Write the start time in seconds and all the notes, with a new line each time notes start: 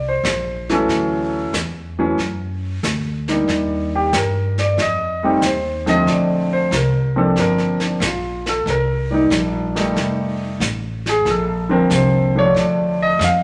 Already playing: C2
0.08 C5
0.23 A#1, snare, hi-hat pedal
0.69 E3 F#3 A3 C#4, snare
0.74 A4
0.88 D2, brush sweep, snare
1.53 E2, snare, hi-hat pedal
1.99 E3 F#3 A3 C#4
2.18 F#2, brush sweep, snare
2.83 D2, snare, hi-hat pedal
3.28 G3 A#3 D4 D#4, snare
3.48 D#2, brush sweep, snare
3.95 G4
4.13 G2 A#4, snare, hi-hat pedal
4.58 D5, snare
4.77 F2, brush sweep, snare
4.81 D#5
5.23 G3 A3 C4 D#4 G4
5.41 D#2, snare, hi-hat pedal
5.46 C5
5.86 D3 F3 A3 C4 D#5, snare
6.06 A#1 D5, brush sweep, snare
6.53 C5
6.71 C2 A#4, snare, hi-hat pedal
7.16 F3 A#3 C4 D4 A4
7.36 G1 A#4, brush sweep, snare
7.58 snare
7.80 D4, snare
8.00 A#1, snare, hi-hat pedal
8.06 F4
8.46 A4, snare
8.66 C2, brush sweep, snare
8.70 A#4
9.10 D#3 G3 A#3 D#4 D5
9.30 A#1, snare, hi-hat pedal
9.75 D#3 G3 A3 D#4, snare
9.96 F1, brush sweep, snare
10.60 A1, snare, hi-hat pedal
11.06 G#4, snare
11.25 A#1, brush sweep, snare
11.30 A4
11.69 D3 F3 A#3 C4 A#4
11.90 C2, snare, hi-hat pedal
11.94 C5
12.35 D3 F3 A3 D4 C#5
12.54 D2, brush sweep, snare
12.60 D5
13.02 D#5
13.19 F2, snare, hi-hat pedal
13.24 F5